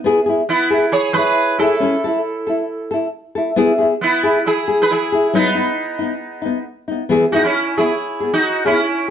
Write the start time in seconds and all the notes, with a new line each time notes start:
0.04 B3 E4 G#4
0.26 E4 G#4
0.49 B3 E4
0.70 E4 G#4
0.92 G#4 C#5
1.13 G#4 B4, muted nylon-string guitar stroke
1.18 E4
1.59 E4 G#4 A4
1.63 E4
1.80 C#4 E4, muted nylon-string guitar stroke
2.04 E4 A4
2.47 E4 A4
2.91 E4 A4
3.35 E4 A4
3.56 B3 E4 G#4
3.78 E4 G#4
4.01 B3 E4
4.23 E4 G#4
4.46 E4 G#4
4.68 G#4, muted nylon-string guitar stroke
4.82 G#4 B4
4.91 E4 G#4
5.12 E4 G#4
5.33 F#3 B3 D#4
5.55 B3 D#4
5.99 B3 D#4
6.42 B3 D#4
6.88 B3 D#4
7.09 E3 B3 E4 G#4
7.32 B3 D#4 E4 F#4 G#4
7.44 C#4 E4
7.77 B3 E4 G#4
8.20 B3 G#4
8.33 D#4 F#4
8.65 B3 C#4 E4 G#4